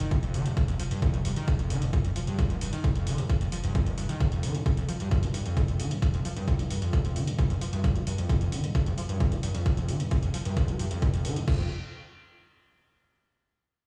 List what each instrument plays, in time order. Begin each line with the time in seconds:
0.00 sub bass F1, acid bass D#3, closed hi-hat
0.11 acid bass D#2, kick, closed hi-hat
0.23 sub bass F1, acid bass F2, closed hi-hat
0.34 sub bass F1, acid bass D#3, open hi-hat
0.46 acid bass F2, closed hi-hat
0.57 acid bass F2, kick, closed hi-hat
0.68 sub bass F1, acid bass F2, closed hi-hat
0.79 sub bass F1, acid bass F3, open hi-hat
0.91 acid bass G2, closed hi-hat
1.02 acid bass F2, kick, closed hi-hat
1.14 sub bass F1, acid bass G#3, closed hi-hat
1.25 sub bass F1, acid bass G2, open hi-hat
1.36 acid bass D#3, closed hi-hat
1.48 acid bass D#2, kick, closed hi-hat
1.59 sub bass F1, acid bass F2, closed hi-hat
1.70 sub bass F1, acid bass D#3, open hi-hat
1.82 sub bass F1, acid bass F2, closed hi-hat
1.93 acid bass F2, kick, closed hi-hat
2.05 sub bass F1, acid bass F2, closed hi-hat
2.16 sub bass F1, acid bass F3, open hi-hat
2.27 acid bass G2, closed hi-hat
2.39 acid bass F2, kick, closed hi-hat
2.50 sub bass F1, acid bass G#3, closed hi-hat
2.61 sub bass F1, acid bass G2, open hi-hat
2.73 acid bass D#3, closed hi-hat
2.84 acid bass D#2, kick, closed hi-hat
2.95 sub bass F1, acid bass F2, closed hi-hat
3.07 sub bass F1, acid bass D#3, open hi-hat
3.18 acid bass F2, closed hi-hat
3.30 acid bass F2, kick, closed hi-hat
3.41 sub bass F1, acid bass F2, closed hi-hat
3.52 sub bass F1, acid bass F3, open hi-hat
3.64 sub bass F1, acid bass G2, closed hi-hat
3.75 acid bass F2, kick, closed hi-hat
3.86 sub bass F1, acid bass G#3, closed hi-hat
3.98 sub bass F1, acid bass G2, open hi-hat
4.09 acid bass D#3, closed hi-hat
4.20 acid bass D#2, kick, closed hi-hat
4.32 acid bass F2, closed hi-hat
4.43 acid bass D#3, open hi-hat
4.55 acid bass F2, closed hi-hat
4.66 acid bass F2, kick, closed hi-hat
4.77 acid bass F2, closed hi-hat
4.89 acid bass F3, open hi-hat
5.00 acid bass G2, closed hi-hat
5.11 acid bass F2, kick, closed hi-hat
5.23 acid bass G#3, closed hi-hat
5.34 acid bass G2, open hi-hat
5.46 acid bass F2, closed hi-hat
5.57 acid bass D#2, kick, closed hi-hat
5.68 acid bass F2, closed hi-hat
5.80 acid bass D#3, open hi-hat
5.91 acid bass F2, closed hi-hat
6.02 acid bass F2, kick, closed hi-hat
6.14 acid bass F2, closed hi-hat
6.25 acid bass F3, open hi-hat
6.36 acid bass G2, closed hi-hat
6.48 acid bass F2, kick, closed hi-hat
6.59 acid bass G#3, closed hi-hat
6.70 acid bass G2, open hi-hat
6.82 acid bass F2, closed hi-hat
6.93 acid bass D#2, kick, closed hi-hat
7.05 acid bass F2, closed hi-hat
7.16 acid bass D#3, open hi-hat
7.27 acid bass F2, closed hi-hat
7.39 acid bass F2, kick, closed hi-hat
7.50 acid bass F2, closed hi-hat
7.61 acid bass F3, open hi-hat
7.73 acid bass G2, closed hi-hat
7.84 acid bass F2, kick, closed hi-hat
7.95 acid bass G#3, closed hi-hat
8.07 acid bass G2, open hi-hat
8.18 acid bass F2, closed hi-hat
8.29 acid bass D#2, kick, closed hi-hat
8.41 acid bass F2, closed hi-hat
8.52 acid bass D#3, open hi-hat
8.64 acid bass F2, closed hi-hat
8.75 acid bass F2, kick, closed hi-hat
8.86 acid bass F2, closed hi-hat
8.98 acid bass F3, open hi-hat
9.09 acid bass G2, closed hi-hat
9.20 acid bass F2, kick, closed hi-hat
9.32 acid bass G#3, closed hi-hat
9.43 acid bass G2, open hi-hat
9.55 acid bass F2, closed hi-hat
9.66 acid bass D#2, kick, closed hi-hat
9.77 acid bass F2, closed hi-hat
9.89 acid bass D#3, open hi-hat
10.00 acid bass F2, closed hi-hat
10.11 acid bass F2, kick, closed hi-hat
10.23 acid bass F2, closed hi-hat
10.34 acid bass F3, open hi-hat
10.45 acid bass G2, closed hi-hat
10.57 acid bass F2, kick, closed hi-hat
10.68 acid bass G#3, closed hi-hat
10.79 acid bass G2, open hi-hat
10.91 acid bass F2, closed hi-hat
11.02 acid bass D#2, kick, closed hi-hat
11.14 acid bass F2, closed hi-hat
11.25 acid bass D#3, open hi-hat
11.36 acid bass F2, closed hi-hat
11.48 acid bass F2, kick, crash